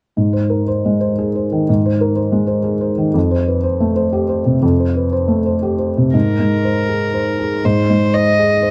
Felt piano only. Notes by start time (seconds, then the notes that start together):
0.17 G#2
0.33 C5
0.50 A#4
0.68 C5
0.85 G#3
1.00 C5
1.19 G#4
1.35 C5
1.52 D#3
1.69 G#2
1.86 C5
2.01 A#4
2.16 C5
2.32 G#3
2.47 C5
2.64 G#4
2.81 C5
2.98 D#3
3.14 F2
3.31 C5
3.48 B4
3.64 C5
3.80 A3
3.96 C5
4.13 G4
4.29 C5
4.45 C3
4.62 F2
4.80 C5
4.96 B4
5.13 C5
5.28 A3
5.46 C5
5.63 G4
5.79 C5
5.97 C3
6.14 G#2
6.39 G#3
6.64 C5
6.89 G#4
7.14 C5
7.39 G#4
7.65 G#2
7.90 G#3
8.14 C5
8.39 G#4
8.62 C5